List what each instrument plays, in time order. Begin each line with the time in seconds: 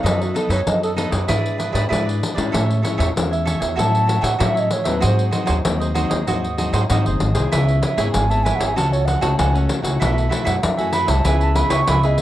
Already playing: nylon-string guitar B3 D#4 A4
0.03 upright bass F#2, nylon-string guitar F#3, cavaquinho D#4 A4 B4 D#5, flute D#5, pandeiro
0.22 flute F#4, pandeiro
0.34 nylon-string guitar B3 D#4 A4, cavaquinho D#4 A4 B4 D#5, flute A4, pandeiro
0.49 upright bass F#2, cavaquinho D#4 A4 B4 D#5, flute C#5, pandeiro
0.66 upright bass F#2, nylon-string guitar F#3 B3 D#4 A4, flute D#5, pandeiro
0.83 flute A4, cavaquinho A4 B4 D#5, pandeiro
0.96 nylon-string guitar B3 D#4 A4, cavaquinho D#4 A4 B4 D#5, pandeiro
1.11 upright bass F#2, cavaquinho A4 B4 D#5, pandeiro
1.28 upright bass G#2, nylon-string guitar G#3 D4 E4 B4, cavaquinho E4 G#4 B4 D5, pandeiro
1.46 pandeiro
1.58 cavaquinho E4 G#4 B4 D5, pandeiro
1.72 upright bass G#2, nylon-string guitar D4 E4 B4, cavaquinho E4 G#4 B4 D5, pandeiro
1.89 upright bass G#2, nylon-string guitar G#3 D4 E4, cavaquinho E4 G#4 B4 D5, pandeiro
1.93 nylon-string guitar B4
2.06 cavaquinho G#4 B4 D5, pandeiro
2.23 pandeiro
2.35 upright bass G#2, nylon-string guitar G#3 C#4 E4, cavaquinho G#4 B4 D5, pandeiro
2.52 upright bass A2, nylon-string guitar A2, cavaquinho A4 C#5 E5 G#5, pandeiro
2.71 pandeiro
2.82 nylon-string guitar G#3 C#4 E4, cavaquinho A4 C#5 E5 G#5, pandeiro
2.97 upright bass E2, cavaquinho A4 C#5 E5 G#5, pandeiro
3.16 upright bass E2, nylon-string guitar E3 G#3 C#4 E4, pandeiro
3.31 cavaquinho C#5 E5 G#5, pandeiro
3.45 cavaquinho A4 C#5 E5 G#5, pandeiro
3.60 upright bass E2, cavaquinho C#5 E5 G#5, pandeiro
3.76 upright bass A2, nylon-string guitar A2 F#3 C#4 E4, cavaquinho F#4 A4 C#5 E5, flute A5, pandeiro
3.95 pandeiro
4.06 cavaquinho F#4 A4 C#5 E5, pandeiro
4.21 upright bass A2, cavaquinho F#4 A4 C#5 E5, flute F#5, pandeiro
4.39 upright bass A2, nylon-string guitar A2 F#3 C#4 E4, cavaquinho F#4 A4 C#5 E5, flute E5, pandeiro
4.55 cavaquinho A4 C#5 E5, pandeiro
4.59 flute D#5
4.71 flute C#5, pandeiro
4.84 upright bass D#2, nylon-string guitar F#3 C4, cavaquinho A4 C#5 E5, pandeiro
4.88 nylon-string guitar D#4, flute B4
5.00 upright bass G#2, nylon-string guitar G#2, cavaquinho F#4 G#4 C5 D#5, pandeiro
5.06 flute C5
5.19 pandeiro
5.31 nylon-string guitar F#3 C4 D#4, cavaquinho F#4 G#4 C5 D#5, pandeiro
5.46 upright bass D#2, cavaquinho F#4 G#4 C5 D#5, pandeiro
5.65 upright bass D#2, nylon-string guitar D#3 F#3 C4 D#4, pandeiro
5.80 cavaquinho G#4 C5 D#5, pandeiro
5.94 nylon-string guitar F#3 C4 D#4, cavaquinho F#4 G#4 C5 D#5, pandeiro
6.09 upright bass D#2, cavaquinho G#4 C5 D#5, pandeiro
6.27 upright bass D#2, nylon-string guitar G#2 F#3 C4 D#4, cavaquinho F#4 G#4 C5 D#5, pandeiro
6.44 pandeiro
6.58 nylon-string guitar F#3 C4 D#4, cavaquinho F#4 G#4 C5 D#5, pandeiro
6.73 upright bass G#2, cavaquinho F#4 G#4 C5 D#5, pandeiro
6.90 upright bass G#2, nylon-string guitar D#3 F#3 C4 D#4, cavaquinho F#4 G#4 C5 D#5, pandeiro
7.05 upright bass F#1, cavaquinho G#4 C5 D#5, pandeiro
7.20 upright bass G#1, pandeiro
7.34 upright bass C2, nylon-string guitar B3 E4 G#4, cavaquinho G#4 C5 D#5, pandeiro
7.52 upright bass C#2, nylon-string guitar C#3, cavaquinho E4 B4 C#5 E5, pandeiro
7.69 pandeiro
7.82 cavaquinho E4 B4 C#5 E5, pandeiro
7.97 upright bass G#1, nylon-string guitar B3 E4 G#4, cavaquinho E4 B4 C#5 E5, pandeiro
8.13 upright bass G#1, nylon-string guitar G#2, flute G#5, pandeiro
8.30 nylon-string guitar B3 E4 G#4, cavaquinho B4 C#5 E5, flute A5, pandeiro
8.43 cavaquinho E4 B4 C#5 E5, flute G#5, pandeiro
8.55 cavaquinho E5, flute F#5
8.60 upright bass G#1, cavaquinho B4 C#5, pandeiro
8.66 flute G#5
8.76 upright bass C#2, nylon-string guitar C#3 A3 C#4 F#4, cavaquinho F#4 A4 C#5 F#5, flute A5, pandeiro
8.92 flute C#5, pandeiro
9.06 cavaquinho F#4 A4 C#5 F#5, flute F#5, pandeiro
9.21 upright bass C#2, nylon-string guitar A3 C#4 F#4, cavaquinho F#4 A4 C#5 F#5, flute A5, pandeiro
9.38 upright bass C#2, nylon-string guitar C#3, cavaquinho F#4 A4 C#5 F#5, flute G#5, pandeiro
9.54 nylon-string guitar A3 C#4 F#4, cavaquinho A4 C#5 F#5, pandeiro
9.69 pandeiro
9.82 upright bass C#2, nylon-string guitar A3 E4 F#4, cavaquinho A4 C#5 F#5, pandeiro
10.00 upright bass B1, nylon-string guitar B2, cavaquinho E4 A4 B4 E5, pandeiro
10.18 pandeiro
10.29 nylon-string guitar A3 E4 F#4, cavaquinho E4 A4 B4 E5, pandeiro
10.45 upright bass F#2, cavaquinho E4 A4 B4 E5, flute F#5, pandeiro
10.63 nylon-string guitar F#2, upright bass F#2, flute E5, pandeiro
10.77 nylon-string guitar A3 E4 F#4, cavaquinho A4 B4 E5, flute G#5, pandeiro
10.93 cavaquinho E4 A4 B4 E5, flute B5, pandeiro
11.07 upright bass C2, cavaquinho A4 B4 E5, flute A5, pandeiro
11.24 upright bass C#2, nylon-string guitar C#3 B3 E4 G#4, cavaquinho E4 B4 C#5 E5, flute G#5, pandeiro
11.41 flute A5, pandeiro
11.55 nylon-string guitar B3 E4 G#4, cavaquinho E4 B4 C#5 E5, flute B5, pandeiro
11.70 upright bass C#2, cavaquinho E4 B4 C#5 E5, flute C#6, pandeiro
11.87 upright bass C#2, nylon-string guitar G#2, cavaquinho E4 B4 C#5 E5, flute B5, pandeiro
12.03 nylon-string guitar B3 E4 G#4, cavaquinho B4 C#5 E5, flute D#5, pandeiro
12.18 pandeiro